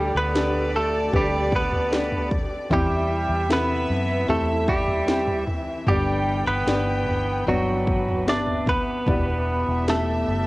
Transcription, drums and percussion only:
0.35 snare loud
1.14 kick medium
1.14 floor tom medium
1.52 kick medium
1.72 floor tom medium
1.93 snare loud
2.12 floor tom medium
2.31 kick loud
2.31 floor tom medium
2.71 kick loud
2.71 floor tom loud
3.50 snare loud
4.29 floor tom medium
4.68 kick loud
4.88 floor tom medium
5.08 snare loud
5.27 floor tom medium
5.47 floor tom medium
5.87 floor tom loud
6.68 snare loud
7.06 floor tom medium
7.47 floor tom medium
7.87 kick medium
8.08 floor tom medium
8.28 snare loud
8.47 floor tom medium
8.66 kick medium
8.66 floor tom medium
9.07 kick loud
9.07 floor tom loud
9.88 snare loud

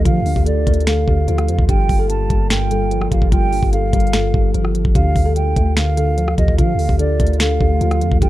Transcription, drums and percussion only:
0.05 kick loud
0.05 closed hi-hat medium
0.26 open hi-hat medium
0.36 kick loud
0.46 closed hi-hat medium
0.67 kick loud
0.67 closed hi-hat medium
0.74 closed hi-hat medium
0.80 closed hi-hat soft
0.87 finger snap loud
0.87 snare loud
0.87 closed hi-hat medium
1.08 kick loud
1.28 closed hi-hat medium
1.38 cross-stick loud
1.38 closed hi-hat soft
1.48 closed hi-hat medium
1.59 kick loud
1.69 kick loud
1.69 closed hi-hat medium
1.89 kick medium
1.89 open hi-hat medium
2.10 closed hi-hat medium
2.30 kick loud
2.30 closed hi-hat medium
2.50 finger snap loud
2.50 snare loud
2.50 closed hi-hat medium
2.71 closed hi-hat medium
2.91 closed hi-hat medium
3.01 cross-stick loud
3.12 kick medium
3.12 closed hi-hat medium
3.22 kick loud
3.32 kick loud
3.32 closed hi-hat medium
3.53 open hi-hat medium
3.63 kick loud
3.73 closed hi-hat medium
3.93 kick loud
3.93 closed hi-hat medium
4.00 closed hi-hat medium
4.07 closed hi-hat soft
4.13 finger snap loud
4.13 snare loud
4.13 closed hi-hat medium
4.34 kick loud
4.54 closed hi-hat medium
4.65 cross-stick medium
4.75 closed hi-hat medium
4.85 kick loud
4.95 kick loud
4.95 closed hi-hat medium
5.16 kick medium
5.16 open hi-hat medium
5.36 closed hi-hat medium
5.56 kick loud
5.56 closed hi-hat medium
5.77 finger snap loud
5.77 snare loud
5.77 closed hi-hat medium
5.97 closed hi-hat medium
6.18 closed hi-hat medium
6.28 cross-stick loud
6.38 kick medium
6.38 closed hi-hat medium
6.48 kick loud
6.58 kick loud
6.58 closed hi-hat medium
6.79 open hi-hat medium
6.89 kick loud
6.99 closed hi-hat medium
7.20 kick loud
7.20 closed hi-hat medium
7.27 closed hi-hat medium
7.33 closed hi-hat soft
7.40 finger snap loud
7.40 snare loud
7.40 closed hi-hat medium
7.61 kick loud
7.81 closed hi-hat medium
7.91 cross-stick loud
7.91 closed hi-hat soft
8.01 closed hi-hat medium
8.12 kick loud
8.22 kick loud
8.22 closed hi-hat medium

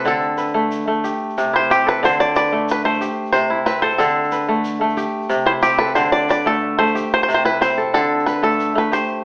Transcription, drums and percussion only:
0.05 shaker soft
0.21 shaker soft
0.38 shaker soft
0.72 shaker medium
1.04 shaker medium
1.30 shaker soft
1.38 shaker medium
1.71 shaker medium
1.96 shaker soft
2.04 shaker medium
2.27 shaker soft
2.35 shaker medium
2.69 shaker medium
2.94 shaker soft
3.02 shaker medium
3.26 shaker soft
3.34 shaker medium
3.66 shaker medium
3.82 shaker soft
3.91 shaker soft
3.99 shaker medium
4.24 shaker soft
4.32 shaker medium
4.64 shaker medium
4.89 shaker soft
4.97 shaker medium
5.22 shaker soft
5.30 shaker medium
5.63 shaker medium
5.79 shaker soft
5.87 shaker soft
5.95 shaker medium
6.20 shaker soft
6.29 shaker medium
6.87 shaker soft
6.96 shaker medium
7.21 shaker soft
7.29 shaker medium
7.62 shaker medium
7.78 shaker soft
7.95 shaker medium
8.19 shaker soft
8.27 shaker medium
8.52 shaker soft
8.60 shaker medium
8.93 shaker medium

